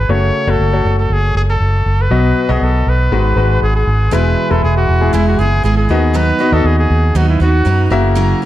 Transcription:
0.00 0.11 G#2 medium
0.00 0.11 D#3 soft
0.00 0.11 G#3 medium
0.00 0.10 F#4 medium
0.00 0.12 G#4 medium
0.00 0.11 B4 medium
0.00 0.12 B4 medium
0.09 0.30 F#1 medium
0.09 0.81 C#3 soft
0.09 0.38 A3 medium
0.09 0.38 F#4 medium
0.09 0.39 C#5 medium
0.09 0.51 C#5 medium
0.47 0.58 F#1 medium
0.47 0.67 A3 medium
0.47 0.67 F#4 medium
0.47 0.99 A4 medium
0.47 0.67 C#5 medium
0.59 0.80 F#1 medium
0.73 1.50 A3 medium
0.73 1.50 F#4 soft
0.73 1.50 C#5 medium
0.85 1.06 F#1 medium
0.99 1.15 A4 medium
1.10 1.31 F#1 medium
1.10 1.36 G#4 medium
1.35 1.56 F#1 medium
1.35 1.42 G#4 medium
1.50 2.03 A4 medium
1.60 1.81 F#1 medium
1.86 2.07 F#1 medium
2.01 2.52 B4 medium
2.10 2.32 B1 medium
2.10 2.83 B2 medium
2.10 2.83 F#3 soft
2.10 2.40 B3 medium
2.10 2.40 F#4 medium
2.10 2.40 D#5 medium
2.49 2.60 B1 medium
2.49 3.12 B3 medium
2.49 3.11 F#4 medium
2.49 2.66 G#4 medium
2.49 3.12 D#5 medium
2.61 2.82 B1 medium
2.61 2.91 A4 medium
2.87 3.08 B1 medium
2.87 3.63 B4 medium
3.11 3.33 G#1 medium
3.11 3.84 G#2 medium
3.11 3.84 D#3 medium
3.11 3.32 G#3 medium
3.11 3.32 F#4 medium
3.11 3.32 B4 medium
3.36 3.57 G#1 medium
3.36 3.95 G#3 medium
3.36 3.95 F#4 medium
3.36 3.95 B4 medium
3.62 3.83 G#1 medium
3.62 3.75 G#4 medium
3.76 4.15 G#4 medium
3.87 4.08 G#1 medium
4.11 4.34 E1 medium
4.11 4.85 B2 medium
4.11 5.12 E3 medium
4.11 5.12 G#3 medium
4.11 4.42 G#3 medium
4.11 5.13 B3 medium
4.11 4.42 E4 medium
4.11 5.13 E4 medium
4.11 5.13 G#4 medium
4.11 4.42 B4 medium
4.11 4.53 B4 loud
4.51 4.61 E1 medium
4.51 4.89 G#3 medium
4.51 4.89 E4 medium
4.51 4.63 A4 medium
4.51 4.89 B4 medium
4.64 4.84 E1 loud
4.64 4.76 G#4 medium
4.77 5.15 F#4 medium
4.89 5.09 E1 medium
5.01 5.78 G#3 medium
5.01 5.78 E4 medium
5.01 5.78 G#4 medium
5.13 5.34 E1 medium
5.13 5.39 E3 medium
5.13 5.39 G#3 medium
5.13 5.39 B3 medium
5.13 5.27 E4 medium
5.13 5.39 E4 medium
5.13 5.37 G#4 medium
5.28 5.40 F#4 medium
5.39 5.60 F#1 medium
5.39 5.63 B3 soft
5.39 5.64 E4 soft
5.39 5.64 G#4 soft
5.39 5.64 G#4 medium
5.63 5.85 G#1 medium
5.63 5.89 G#3 medium
5.63 5.90 B3 medium
5.63 5.90 E4 medium
5.63 5.76 G#4 medium
5.63 5.88 G#4 medium
5.77 6.18 G#4 medium
5.89 6.31 D#2 medium
5.89 6.62 D#3 medium
5.89 6.31 B3 medium
5.89 6.13 B3 soft
5.89 6.14 D#4 soft
5.89 6.31 F#4 medium
5.89 6.14 B4 soft
5.89 6.31 D#5 medium
6.14 6.40 D#3 medium
6.14 6.40 F#3 medium
6.14 6.40 B3 medium
6.14 6.39 D#4 medium
6.14 6.38 B4 medium
6.14 6.55 B4 medium
6.39 6.50 B3 medium
6.39 7.15 B3 soft
6.39 7.15 D#4 medium
6.39 6.50 F#4 medium
6.39 7.15 B4 medium
6.39 6.50 D#5 medium
6.52 6.63 D#2 loud
6.52 7.29 B3 medium
6.52 7.30 F#4 medium
6.52 6.68 A4 medium
6.52 7.29 D#5 medium
6.64 6.85 D#2 medium
6.64 6.79 G#4 medium
6.79 7.18 G#4 medium
6.90 7.11 D#2 medium
7.15 7.36 D#2 medium
7.15 7.41 D#3 medium
7.15 7.41 F#3 medium
7.15 7.41 B3 medium
7.15 7.40 D#4 medium
7.15 7.29 F#4 medium
7.15 7.39 B4 medium
7.29 7.41 E4 medium
7.40 7.61 D#2 medium
7.40 7.64 B3 soft
7.40 7.65 D#4 soft
7.40 7.89 F#4 medium
7.40 7.66 B4 medium
7.65 7.87 F#2 medium
7.65 7.91 F#3 medium
7.65 7.91 B3 medium
7.65 7.91 D#4 medium
7.65 7.90 B4 medium
7.90 8.33 F#1 medium
7.90 8.45 C#3 medium
7.90 8.42 A#3 medium
7.90 8.15 C#4 soft
7.90 8.15 E4 soft
7.90 8.42 F#4 medium
7.90 8.16 A#4 soft
7.90 8.42 E5 medium
8.15 8.41 F#3 medium
8.15 8.42 C#4 medium
8.15 8.42 E4 medium
8.15 8.41 A#4 medium
8.42 8.45 A#4 soft

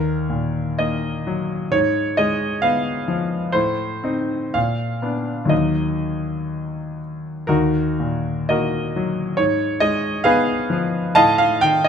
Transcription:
0.00 1.69 D#2 soft
0.00 0.79 A#4 medium
0.29 1.09 A#2 soft
0.79 1.54 A#3 soft
0.79 1.72 D#5 medium
1.27 1.73 F#3 soft
1.72 3.51 G#2 medium
1.72 2.18 C#5 medium
2.17 2.91 G#3 soft
2.17 2.63 D#5 medium
2.62 3.36 B3 soft
2.62 3.54 F5 medium
3.08 3.54 F3 soft
3.52 4.51 A2 medium
3.52 4.54 C5 medium
4.04 4.50 C4 soft
4.04 4.51 D#4 soft
4.54 5.48 A#2 soft
4.54 5.51 F5 medium
5.02 5.47 B3 soft
5.02 5.47 D4 soft
5.45 7.42 D#2 soft
5.45 7.43 F#3 soft
5.45 7.43 A#3 soft
5.45 7.44 D#4 soft
5.45 6.99 D#5 medium
7.47 9.35 D#2 soft
7.47 8.46 D#4 soft
7.47 8.46 F#4 soft
7.47 8.49 A#4 medium
8.00 8.78 A#2 soft
8.49 9.22 A#3 soft
8.49 9.35 F#4 soft
8.49 9.36 A#4 soft
8.49 9.39 D#5 medium
8.96 9.39 F#3 soft
9.37 11.10 G#2 soft
9.37 9.81 C#5 medium
9.80 10.51 G#3 soft
9.80 10.24 D#5 medium
10.24 10.97 B3 soft
10.24 11.11 G#4 medium
10.24 11.11 B4 medium
10.24 11.14 F5 medium
10.70 11.15 F3 medium
11.15 11.88 A2 medium
11.15 11.37 D#5 medium
11.15 11.37 F5 medium
11.15 11.38 A5 loud
11.38 11.61 F5 medium
11.61 11.88 D#3 soft
11.61 11.84 G5 medium
11.84 11.88 D#5 medium

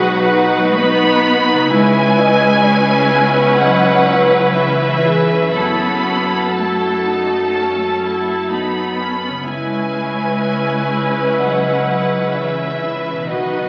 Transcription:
0.00 1.67 B1 medium
0.00 1.64 B2 medium
0.00 0.77 F#3 medium
0.00 1.57 B3 soft
0.00 1.66 D#4 medium
0.00 1.70 D#4 soft
0.00 0.29 F#4 medium
0.00 1.67 F#4 medium
0.00 1.72 F#4 soft
0.00 1.67 B4 medium
0.00 0.76 F#5 medium
0.30 1.69 D#4 medium
0.76 1.70 B3 loud
0.76 1.68 B5 loud
1.54 5.44 C#3 medium
1.58 5.48 B3 medium
1.62 5.47 C#4 medium
1.67 5.55 C#4 medium
1.67 5.52 E4 medium
1.67 5.51 E4 medium
1.67 5.52 B4 medium
1.67 3.58 G#5 loud
1.71 5.53 C#2 medium
1.71 3.56 G#3 loud
1.71 2.17 E4 medium
2.19 2.65 D#5 medium
2.66 3.12 C#4 medium
3.12 3.59 B3 medium
3.58 4.54 F#3 loud
3.58 4.06 D#5 medium
3.58 4.55 F#5 medium
4.06 4.55 C#4 medium
4.54 5.56 E3 medium
4.54 5.04 E4 medium
4.54 5.54 E5 medium
5.04 5.42 G#4 medium
5.40 9.30 F#2 soft
5.44 9.34 A3 soft
5.48 9.38 C#4 soft
5.53 9.25 F#2 medium
5.53 6.53 B3 medium
5.53 6.44 C#4 medium
5.53 9.42 E4 soft
5.53 6.44 E4 medium
5.53 9.28 A4 medium
5.53 6.55 B5 medium
5.57 8.97 F#4 medium
6.54 8.51 A3 medium
6.54 7.01 E4 medium
6.54 8.50 A5 medium
7.04 7.53 D#4 medium
7.52 8.01 C#4 medium
8.02 8.51 E4 medium
8.49 9.49 B3 medium
8.49 8.99 D#4 medium
8.49 9.46 B5 medium
8.99 9.46 C#4 soft
9.29 13.19 C#3 soft
9.34 13.16 B3 soft
9.39 13.28 C#4 soft
9.43 13.25 C#4 medium
9.43 13.31 E4 soft
9.43 13.24 E4 medium
9.48 13.26 C#2 medium
9.48 11.36 G#3 medium
9.48 11.36 E4 medium
9.48 13.25 B4 medium
9.48 11.37 G#5 medium
11.39 12.35 F#3 medium
11.39 12.34 D#5 medium
11.39 12.35 F#5 medium
12.35 13.28 E3 medium
12.35 12.83 C#4 soft
12.35 13.30 E5 medium
12.82 13.29 E4 soft
13.12 13.69 B2 soft
13.17 13.69 B3 soft
13.21 13.69 D#4 soft
13.26 13.69 D#3 medium
13.26 13.69 D#4 soft
13.26 13.69 F#4 soft
13.26 13.69 F#4 medium
13.30 13.69 B1 medium
13.30 13.69 B4 medium
13.30 13.69 D#5 medium

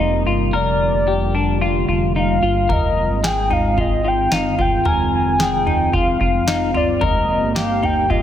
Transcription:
0.00 0.25 F1 medium
0.00 0.51 C3 medium
0.00 0.52 G3 medium
0.00 2.66 A#3 medium
0.00 0.26 D#4 medium
0.00 0.49 D#4 medium
0.00 0.23 D#5 medium
0.26 0.52 G1 medium
0.26 0.54 F4 medium
0.53 0.92 F1 loud
0.53 2.68 D3 medium
0.53 2.68 G3 medium
0.53 6.98 F4 medium
0.53 1.07 A#4 medium
0.53 1.58 D5 loud
0.94 1.85 F1 medium
1.08 1.35 G4 medium
1.35 1.61 D4 medium
1.61 1.87 F4 medium
1.89 2.40 F1 medium
1.89 2.16 F4 medium
2.16 2.42 D#4 medium
2.16 2.74 F5 medium
2.42 2.68 G1 medium
2.42 2.70 F4 medium
2.69 3.08 F1 loud
2.69 6.98 D#3 medium
2.69 6.98 G#3 medium
2.69 8.22 C4 medium
2.69 3.23 A#4 medium
2.69 3.28 D#5 loud
2.69 kick medium
2.69 floor tom medium
3.10 4.28 G#1 medium
3.24 3.51 G#4 medium
3.24 3.54 G5 medium
3.24 snare medium
3.50 3.77 D#4 medium
3.50 3.82 F5 loud
3.50 floor tom medium
3.78 4.03 F4 medium
3.78 4.09 D#5 medium
3.78 kick medium
3.78 floor tom medium
4.05 4.31 F4 medium
4.05 4.35 G5 loud
4.32 4.58 G1 medium
4.32 4.58 D#4 medium
4.32 4.62 F5 medium
4.32 snare medium
4.59 4.85 G1 medium
4.59 4.86 F4 medium
4.59 4.87 G5 loud
4.59 kick medium
4.59 floor tom medium
4.85 5.24 F1 loud
4.85 5.39 A#4 medium
4.85 5.12 G#5 loud
4.85 floor tom medium
5.15 5.44 G#5 medium
5.26 6.17 F1 medium
5.40 5.67 G#4 medium
5.40 5.96 G5 loud
5.40 snare medium
5.67 5.93 D#4 medium
5.67 floor tom medium
5.93 6.20 F4 medium
5.93 6.78 F5 loud
5.93 kick medium
5.93 floor tom medium
6.21 6.76 F1 medium
6.21 6.47 F4 medium
6.21 kick medium
6.47 6.74 D#4 medium
6.47 snare medium
6.74 7.00 G1 medium
6.74 7.02 F4 medium
6.74 7.05 D5 medium
6.74 floor tom medium
7.01 7.40 F1 loud
7.01 8.22 D#3 medium
7.01 8.22 A#3 medium
7.01 8.22 G4 medium
7.01 7.55 A#4 medium
7.01 7.59 D#5 medium
7.01 kick loud
7.01 floor tom medium
7.43 8.22 G1 medium
7.56 7.83 G4 medium
7.56 7.86 F5 medium
7.56 snare loud
7.83 8.10 D#4 medium
7.83 8.12 G5 loud
7.83 floor tom medium
8.10 8.22 F4 medium
8.10 8.22 D#5 medium
8.10 kick medium
8.10 floor tom medium

